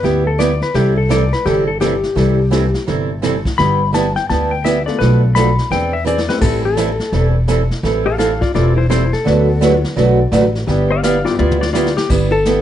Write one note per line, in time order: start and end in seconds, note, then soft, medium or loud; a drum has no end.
0.03 0.60 D2 medium
0.03 0.25 G3 medium
0.03 0.25 B3 medium
0.03 0.25 E4 medium
0.03 0.25 G4 medium
0.03 0.26 G4 medium
0.03 brush sweep soft
0.03 snare soft
0.27 0.39 A4 medium
0.38 0.50 G3 medium
0.38 0.50 B3 medium
0.38 0.50 E4 medium
0.38 0.51 G4 medium
0.38 0.61 D5 loud
0.38 snare medium
0.38 hi-hat pedal medium
0.61 0.75 B4 medium
0.61 snare soft
0.74 1.31 C2 medium
0.74 0.96 C3 medium
0.74 0.96 E3 medium
0.74 0.96 G3 medium
0.74 0.96 C4 medium
0.74 0.96 E4 medium
0.74 0.97 G4 medium
0.74 0.96 A4 medium
0.74 brush sweep soft
0.74 snare soft
0.97 1.10 A4 medium
1.09 1.21 C3 medium
1.09 1.21 E3 medium
1.09 1.21 G3 medium
1.09 1.21 C4 medium
1.09 1.21 E4 medium
1.09 1.22 A4 medium
1.09 1.32 D5 medium
1.09 snare medium
1.09 hi-hat pedal medium
1.33 1.45 B4 medium
1.33 snare soft
1.45 2.02 G1 medium
1.45 1.67 C3 medium
1.45 1.67 E3 medium
1.45 1.67 G3 medium
1.45 1.67 C4 medium
1.45 1.67 E4 medium
1.45 1.67 G4 medium
1.45 1.68 A4 medium
1.45 brush sweep medium
1.45 snare soft
1.67 1.80 A4 medium
1.80 1.92 C3 medium
1.80 1.92 E3 medium
1.80 1.92 G3 medium
1.80 1.92 C4 medium
1.80 1.93 E4 medium
1.80 2.84 G4 loud
1.80 1.93 A4 medium
1.80 snare medium
1.80 hi-hat pedal medium
2.03 snare soft
2.15 2.73 C2 medium
2.15 2.37 C3 medium
2.15 2.38 E3 medium
2.15 2.38 G3 medium
2.15 2.38 C4 medium
2.15 2.38 E4 medium
2.15 2.38 A4 medium
2.15 brush sweep medium
2.15 snare medium
2.51 2.63 C3 medium
2.51 2.63 E3 medium
2.51 2.63 G3 medium
2.51 2.63 C4 medium
2.51 2.63 E4 medium
2.51 2.63 A4 medium
2.51 snare medium
2.51 hi-hat pedal medium
2.74 snare soft
2.87 3.45 G1 medium
2.87 3.09 C3 medium
2.87 3.09 E3 medium
2.87 3.09 G3 medium
2.87 3.09 C4 medium
2.87 3.09 E4 medium
2.87 3.09 A4 medium
2.87 brush sweep soft
2.87 snare soft
3.22 3.34 C3 medium
3.22 3.34 E3 medium
3.22 3.34 G3 medium
3.22 3.34 C4 medium
3.22 3.35 E4 medium
3.22 3.35 A4 medium
3.22 snare medium
3.22 hi-hat pedal medium
3.45 kick medium
3.45 snare soft
3.58 4.16 G1 medium
3.58 3.80 G3 medium
3.58 3.80 B3 medium
3.58 3.80 E4 medium
3.58 3.80 G4 medium
3.58 3.93 B5 loud
3.58 brush sweep medium
3.58 snare medium
3.93 4.05 G3 medium
3.93 4.05 B3 medium
3.93 4.05 E4 medium
3.93 4.06 G4 medium
3.93 4.16 A5 medium
3.93 snare medium
3.93 hi-hat pedal medium
4.16 4.29 G5 loud
4.16 snare soft
4.29 4.87 D2 medium
4.29 4.51 G3 medium
4.29 4.51 B3 medium
4.29 4.52 E4 medium
4.29 4.52 G4 medium
4.29 4.51 A5 medium
4.29 brush sweep soft
4.29 snare soft
4.51 4.64 G5 medium
4.64 4.76 G3 medium
4.64 4.76 B3 medium
4.64 4.76 E4 medium
4.64 4.77 G4 medium
4.64 4.86 E5 medium
4.64 snare medium
4.64 hi-hat pedal medium
4.86 5.33 A3 medium
4.86 5.33 B3 medium
4.86 5.33 D4 medium
4.86 5.34 F4 medium
4.86 5.34 A4 medium
4.86 5.00 D5 medium
4.86 snare soft
4.99 5.58 B1 medium
4.99 5.22 B2 medium
4.99 5.22 F3 medium
4.99 5.22 A3 medium
4.99 5.22 D4 medium
4.99 5.22 A4 medium
4.99 5.21 B4 loud
4.99 brush sweep soft
4.99 snare soft
5.35 5.47 B2 medium
5.35 5.47 F3 medium
5.35 5.47 A3 medium
5.35 5.48 D4 medium
5.35 5.48 A4 medium
5.35 5.70 B5 loud
5.35 snare medium
5.35 hi-hat pedal medium
5.58 snare soft
5.71 6.28 E2 medium
5.71 5.93 E3 medium
5.71 5.93 C4 medium
5.71 5.93 D4 medium
5.71 5.93 G#4 medium
5.71 5.93 G5 loud
5.71 brush sweep soft
5.71 snare soft
5.93 6.06 E5 medium
6.05 6.17 E3 medium
6.05 6.18 C4 medium
6.05 6.18 D4 medium
6.05 6.18 G#4 medium
6.05 6.29 D5 medium
6.05 hi-hat pedal medium
6.18 snare medium
6.28 6.75 A3 medium
6.28 6.75 C4 medium
6.28 6.75 E4 medium
6.28 6.75 G4 medium
6.28 6.76 A4 medium
6.28 6.41 B4 loud
6.28 snare medium
6.41 6.99 A1 medium
6.41 6.63 E3 medium
6.41 6.63 G3 medium
6.41 6.64 C4 medium
6.41 6.64 E4 medium
6.41 6.64 A4 loud
6.41 6.64 A4 medium
6.41 brush sweep soft
6.41 kick medium
6.41 snare soft
6.41 crash medium
6.65 7.34 A4 loud
6.76 6.89 E3 medium
6.76 6.89 G3 medium
6.76 6.89 C4 medium
6.76 6.89 E4 medium
6.76 6.89 A4 medium
6.76 snare medium
6.76 hi-hat pedal medium
7.00 snare soft
7.12 7.70 E1 medium
7.12 7.35 E3 medium
7.12 7.35 G3 medium
7.12 7.35 C4 medium
7.12 7.35 E4 medium
7.12 7.35 A4 medium
7.12 brush sweep soft
7.12 snare soft
7.48 7.60 E3 medium
7.48 7.60 G3 medium
7.48 7.60 C4 medium
7.48 7.60 E4 medium
7.48 7.60 A4 medium
7.48 snare medium
7.48 hi-hat pedal medium
7.71 snare soft
7.83 8.40 A1 medium
7.83 8.05 E3 medium
7.83 8.06 G3 medium
7.83 8.06 C4 medium
7.83 8.06 E4 medium
7.83 8.06 A4 medium
7.83 brush sweep medium
7.83 snare soft
8.06 8.17 A4 medium
8.06 8.18 F5 medium
8.18 8.30 E3 medium
8.18 8.31 G3 medium
8.18 8.31 C4 medium
8.18 8.31 E4 medium
8.18 8.40 A4 medium
8.18 8.31 A4 medium
8.18 8.41 F5 medium
8.18 snare medium
8.18 hi-hat pedal medium
8.41 8.54 F4 medium
8.41 8.54 D5 medium
8.41 kick medium
8.41 snare soft
8.54 9.12 E1 medium
8.54 8.76 E3 medium
8.54 8.76 G3 medium
8.54 8.77 C4 medium
8.54 8.77 E4 medium
8.54 8.76 F4 medium
8.54 8.77 A4 medium
8.54 8.77 D5 loud
8.54 brush sweep soft
8.54 snare soft
8.77 8.89 E4 medium
8.77 8.89 C5 medium
8.90 9.02 E3 medium
8.90 9.02 G3 medium
8.90 9.02 C4 medium
8.90 9.11 E4 medium
8.90 9.02 E4 medium
8.90 9.02 A4 medium
8.90 9.12 C5 loud
8.90 snare medium
8.90 hi-hat pedal medium
9.13 9.82 A4 loud
9.13 snare soft
9.25 9.83 D2 medium
9.25 9.47 D3 medium
9.25 9.47 F#3 medium
9.25 9.47 A3 medium
9.25 10.25 A3 medium
9.25 10.25 B3 medium
9.25 9.47 D4 medium
9.25 10.25 D4 medium
9.25 9.48 F#4 medium
9.25 10.25 F#4 medium
9.25 10.25 A4 medium
9.25 9.48 B4 medium
9.25 brush sweep soft
9.25 snare soft
9.61 9.73 D3 medium
9.61 9.73 F#3 medium
9.61 9.73 A3 medium
9.61 9.73 D4 medium
9.61 9.73 F#4 medium
9.61 9.73 B4 medium
9.61 snare medium
9.61 hi-hat pedal medium
9.84 snare medium
9.96 10.27 B1 medium
9.96 10.18 D3 medium
9.96 10.18 F#3 medium
9.96 10.18 A3 medium
9.96 10.18 D4 medium
9.96 10.19 F#4 medium
9.96 10.19 B4 medium
9.96 brush sweep medium
9.96 snare soft
10.32 10.62 A1 medium
10.32 10.44 D3 medium
10.32 10.44 F#3 medium
10.32 10.44 A3 medium
10.32 10.44 D4 medium
10.32 10.44 F#4 medium
10.32 10.44 B4 medium
10.32 snare medium
10.32 hi-hat pedal medium
10.55 snare soft
10.67 11.24 G1 medium
10.67 11.21 G3 medium
10.67 10.89 G3 medium
10.67 11.21 B3 medium
10.67 10.90 B3 medium
10.67 11.21 D4 medium
10.67 11.21 E4 medium
10.67 10.90 E4 medium
10.67 11.21 G4 medium
10.67 10.90 G4 medium
10.67 brush sweep medium
10.67 snare soft
10.91 11.02 D5 medium
10.91 11.03 F5 medium
11.03 11.15 G3 medium
11.03 11.15 B3 medium
11.03 11.15 E4 medium
11.03 11.16 G4 medium
11.03 11.24 D5 medium
11.03 11.26 F5 medium
11.03 snare medium
11.03 hi-hat pedal medium
11.24 11.37 G3 medium
11.24 11.37 B3 medium
11.24 11.37 D4 medium
11.24 11.37 E4 medium
11.24 11.38 F4 medium
11.24 11.38 G4 medium
11.24 11.38 D5 medium
11.24 snare soft
11.39 11.96 D2 medium
11.39 11.60 G3 medium
11.39 11.61 B3 medium
11.39 11.61 E4 medium
11.39 11.60 F4 medium
11.39 11.61 G4 medium
11.39 11.60 D5 medium
11.39 mid tom medium
11.51 mid tom medium
11.61 11.72 F4 medium
11.61 11.72 D5 loud
11.61 snare medium
11.73 11.86 G3 medium
11.73 11.86 B3 medium
11.73 11.86 E4 medium
11.73 11.95 F4 medium
11.73 11.86 G4 medium
11.73 11.96 D5 medium
11.73 snare medium
11.73 hi-hat pedal medium
11.86 snare medium
11.97 12.10 G4 loud
11.97 snare loud
12.10 12.62 G1 medium
12.10 12.31 G3 medium
12.10 12.32 B3 medium
12.10 12.32 E4 medium
12.10 12.32 G4 medium
12.10 brush sweep soft
12.10 kick medium
12.10 snare soft
12.10 crash medium
12.32 12.62 A4 medium
12.45 12.57 G3 medium
12.45 12.57 B3 medium
12.45 12.58 E4 medium
12.45 12.57 G4 loud
12.45 snare medium
12.45 hi-hat pedal medium